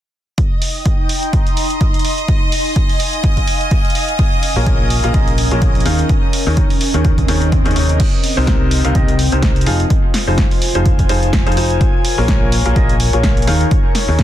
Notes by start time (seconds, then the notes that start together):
0.38 D#4 D#5 D#6, kick, closed hi-hat
0.59 G5, open hi-hat
0.76 C6
0.86 A#5, kick, closed hi-hat
1.09 open hi-hat
1.23 closed hi-hat
1.33 kick, closed hi-hat
1.47 closed hi-hat
1.57 open hi-hat
1.70 closed hi-hat
1.81 kick, closed hi-hat
1.94 closed hi-hat
1.99 closed hi-hat
2.05 open hi-hat
2.18 closed hi-hat
2.28 kick, closed hi-hat
2.35 G#5
2.52 open hi-hat
2.76 kick, closed hi-hat
2.81 F5
2.89 open hi-hat
3.00 open hi-hat
3.13 closed hi-hat
3.24 kick, closed hi-hat
3.37 kick, closed hi-hat
3.47 open hi-hat
3.61 closed hi-hat
3.71 kick, closed hi-hat
3.85 closed hi-hat
3.90 closed hi-hat
3.95 open hi-hat
4.09 closed hi-hat
4.19 C#4, kick, closed hi-hat
4.34 A#4
4.43 open hi-hat
4.56 A#1 A#3 F4 G#4 A#4 C#5
4.66 kick, closed hi-hat
4.90 open hi-hat
5.04 A#1 A#3 F4 G#4 A#4 F5, closed hi-hat
5.14 A#1 A#3 F4 G#4 A#4 D#5, kick, closed hi-hat
5.28 closed hi-hat
5.38 open hi-hat
5.51 A#1 A#3 F4 G#4 A#4 C#5, closed hi-hat
5.62 kick, closed hi-hat
5.75 closed hi-hat
5.80 closed hi-hat
5.86 D#2 D#3 D#4 G#4 A#4 F5, open hi-hat
5.99 closed hi-hat
6.09 kick, closed hi-hat
6.33 open hi-hat
6.47 D#2 D#3 D#4 G#4 A#4 C#5
6.57 kick, closed hi-hat
6.65 D#5
6.70 open hi-hat
6.81 open hi-hat
6.94 D#2 D#3 D#4 G#4 A#4 C#5, closed hi-hat
7.05 kick, closed hi-hat, swell
7.18 kick, closed hi-hat
7.28 D#2 D#3 D#4 G#4 A#4 C#5, open hi-hat
7.42 closed hi-hat
7.52 kick, closed hi-hat
7.66 D#2 D#3 D#4 G#4 A#4 C#5, closed hi-hat
7.71 closed hi-hat
7.76 D#2 C3 D#4 G#4 A#4 C#5, open hi-hat
7.89 closed hi-hat
8.00 C4, kick, closed hi-hat, crash
8.24 open hi-hat
8.37 C2 C3 D#4 G4 A#4 C5
8.47 kick, snare, closed hi-hat
8.66 G5
8.71 open hi-hat
8.85 C2 C3 D#4 G4 A#4 F5, closed hi-hat
8.95 C2 C3 D#4 G4 A#4 D#5, kick, closed hi-hat
9.08 closed hi-hat
9.19 open hi-hat
9.32 C2 C3 D#4 G4 A#4 C5, closed hi-hat
9.42 kick, snare, closed hi-hat
9.56 closed hi-hat
9.61 closed hi-hat
9.66 F1 F3 D#4 F4 G#4 F5, open hi-hat
9.80 C5, closed hi-hat
9.90 kick, closed hi-hat
10.02 G#5
10.14 snare, open hi-hat
10.27 F1 F3 D#4 F4 G#4 C5
10.38 kick, snare, closed hi-hat
10.51 open hi-hat
10.62 open hi-hat
10.75 F1 F3 D#4 F4 G#4 C5, closed hi-hat
10.86 kick, closed hi-hat
10.99 kick, closed hi-hat
11.09 F1 F3 D#4 F4 G#4 C5, open hi-hat
11.23 closed hi-hat
11.33 kick, snare, closed hi-hat
11.47 F2 F3 D#4 F4 G#4 C5, closed hi-hat
11.52 closed hi-hat
11.57 F1 D#4 F4 G#4 C5, open hi-hat
11.70 closed hi-hat
11.81 kick, closed hi-hat
11.88 A#4 C#5
12.05 open hi-hat
12.18 A#1 A#3 F4 G#4 A#4 C#5
12.28 kick, snare, closed hi-hat
12.52 open hi-hat
12.66 A#1 A#3 F4 G#4 A#4 F5, closed hi-hat
12.76 A#1 A#3 F4 G#4 A#4 D#5, kick, closed hi-hat
12.89 closed hi-hat
13.00 open hi-hat
13.13 A#1 A#3 F4 G#4 A#4 C#5, closed hi-hat
13.23 kick, snare, closed hi-hat
13.37 closed hi-hat
13.42 closed hi-hat
13.47 D#2 D#3 D#4 G#4 A#4 F5, open hi-hat
13.61 closed hi-hat
13.71 kick, closed hi-hat
13.95 snare, open hi-hat
14.08 D#2 D#3 D#4 G#4 A#4 C#5
14.19 kick, snare, closed hi-hat